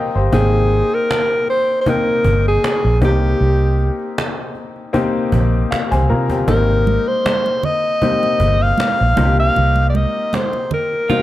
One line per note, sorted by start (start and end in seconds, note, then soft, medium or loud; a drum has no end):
0.00 0.16 A#3 medium
0.00 0.16 C4 medium
0.00 0.17 D#4 medium
0.00 0.16 G4 medium
0.00 0.14 A#4 medium
0.00 0.15 C5 medium
0.00 0.13 D#5 medium
0.00 0.35 F5 medium
0.00 0.31 G5 medium
0.00 0.34 A#5 medium
0.00 0.34 C6 soft
0.15 0.30 G1 medium
0.15 0.52 G4 medium
0.15 0.52 C5 medium
0.15 cajon slap soft
0.32 0.81 G#1 loud
0.32 1.70 A#3 medium
0.32 1.70 C4 medium
0.32 1.70 D#4 medium
0.32 0.96 G#4 medium
0.32 1.70 G5 medium
0.32 cajon bass medium
0.71 cajon slap soft
0.92 1.49 A#4 medium
0.92 cajon slap soft
1.11 cajon slap medium
1.30 cajon slap soft
1.47 1.79 C5 medium
1.47 cajon slap soft
1.68 cajon slap soft
1.81 1.91 C5 medium
1.86 3.00 A#3 medium
1.86 3.00 C4 medium
1.86 3.00 D#4 medium
1.86 2.47 A#4 medium
1.86 3.02 G5 medium
1.86 cajon bass medium
2.07 cajon slap soft
2.24 2.56 G1 medium
2.24 cajon bass medium
2.45 2.99 G#4 medium
2.45 cajon slap soft
2.64 cajon slap medium
2.85 3.02 A#1 medium
3.01 3.33 C2 medium
3.01 4.39 A#3 medium
3.01 4.39 C4 medium
3.01 4.39 D#4 medium
3.01 4.40 G4 medium
3.01 4.15 G4 medium
3.01 cajon bass medium
3.23 cajon slap soft
3.40 3.89 C2 medium
3.40 cajon slap soft
3.61 cajon slap soft
3.78 cajon slap soft
4.00 cajon slap soft
4.18 cajon slap medium
4.38 cajon slap soft
4.55 cajon slap soft
4.76 cajon slap soft
4.93 6.31 A#3 medium
4.93 5.32 C4 medium
4.93 5.33 D#4 medium
4.93 5.33 G4 medium
4.93 cajon bass medium
5.14 cajon slap soft
5.32 5.64 A#1 medium
5.32 cajon bass medium
5.53 cajon slap soft
5.71 5.90 F5 medium
5.71 muted fingered electric bass stroke soft
5.71 cajon slap medium
5.91 6.12 C2 medium
5.91 6.09 G4 soft
5.91 6.08 C5 medium
5.91 6.08 G#5 medium
5.91 cajon bass medium
6.09 6.41 C3 medium
6.09 6.30 F4 soft
6.09 6.29 A#4 medium
6.09 6.45 A#5 medium
6.09 cajon slap soft
6.30 6.47 C4 soft
6.30 6.48 G4 medium
6.30 cajon bass medium
6.30 cajon slap soft
6.48 6.96 G#1 medium
6.48 7.85 A#3 medium
6.48 7.86 C4 medium
6.48 7.86 D#4 medium
6.48 7.86 G4 medium
6.48 7.10 A#4 medium
6.48 cajon bass medium
6.48 low conga medium
6.86 cajon slap soft
6.86 high conga medium
7.07 7.66 C5 medium
7.07 cajon slap soft
7.26 cajon slap medium
7.26 high conga medium
7.45 cajon slap soft
7.45 muted conga soft
7.63 8.64 D#5 medium
7.63 cajon slap soft
7.63 low conga medium
7.83 cajon slap soft
8.02 9.15 A#3 medium
8.02 9.16 C4 medium
8.02 9.16 D#4 medium
8.02 9.18 G4 medium
8.02 cajon bass medium
8.02 high conga soft
8.22 cajon slap soft
8.22 muted conga soft
8.40 8.71 G1 medium
8.40 cajon bass medium
8.61 9.39 F5 medium
8.61 cajon slap soft
8.78 cajon slap loud
8.78 muted conga soft
8.78 high conga medium
9.01 9.15 A#1 medium
9.17 9.49 C2 medium
9.17 10.54 A#3 medium
9.17 10.55 C4 medium
9.17 10.55 D#4 medium
9.17 9.25 F4 medium
9.17 cajon bass medium
9.17 high conga medium
9.17 low conga medium
9.25 10.58 G4 medium
9.39 9.85 F5 loud
9.39 cajon slap soft
9.56 10.05 C2 medium
9.56 cajon slap soft
9.56 muted conga soft
9.56 low conga medium
9.76 muted conga soft
9.90 9.97 D5 medium
9.94 10.37 D#5 medium
9.94 cajon slap soft
9.94 high conga medium
10.15 cajon slap soft
10.33 10.73 C5 medium
10.33 cajon slap medium
10.33 muted conga soft
10.33 high conga medium
10.53 cajon slap soft
10.53 muted conga soft
10.71 11.22 A#4 medium
10.71 cajon slap soft
10.71 low conga medium
10.91 cajon slap soft
11.09 11.22 A#3 medium
11.09 11.22 C4 medium
11.09 11.22 D#4 medium
11.09 11.22 F4 medium
11.09 11.17 F#4 soft
11.09 cajon bass medium
11.09 high conga medium
11.17 11.22 G4 medium